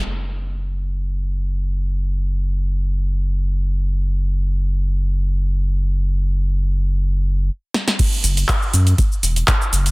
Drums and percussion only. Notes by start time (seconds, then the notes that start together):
7.74 snare
7.88 snare
7.99 kick, closed hi-hat, crash, shaker
8.13 shaker
8.24 open hi-hat, shaker
8.37 closed hi-hat, shaker
8.48 kick, clap, closed hi-hat, shaker
8.62 shaker
8.74 open hi-hat, shaker
8.87 closed hi-hat, shaker
8.98 kick, closed hi-hat, shaker
9.12 shaker
9.23 open hi-hat, shaker
9.36 closed hi-hat, shaker
9.48 kick, clap, closed hi-hat, shaker
9.62 shaker
9.73 open hi-hat, shaker
9.86 closed hi-hat, shaker